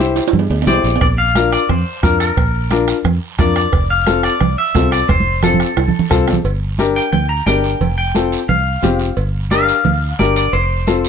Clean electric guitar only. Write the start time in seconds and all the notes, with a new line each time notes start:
Already playing: E5
0.67 D5
1.01 D5
1.18 F5
1.53 D5
1.69 C5
2.03 A#4
2.20 A#4
3.40 D5
3.56 D5
3.90 F5
4.24 D5
4.58 E5
4.92 D5
5.09 C5
5.44 A4
6.96 G5
7.13 G5
7.29 A#5
7.47 G5
7.98 G5
8.49 F5
9.51 F5
10.19 D5
10.36 D5
10.53 C5